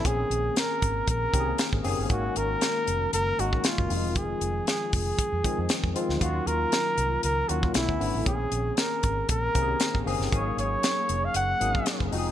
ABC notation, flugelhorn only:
X:1
M:4/4
L:1/16
Q:"Swing 16ths" 1/4=117
K:Abmix
V:1 name="Flugelhorn"
A4 B4 B6 z2 | G2 B6 B2 G2 F4 | A4 A2 A8 z2 | G2 B6 B2 G2 =E4 |
A4 B4 B6 z2 | d2 d4- d f g6 z2 |]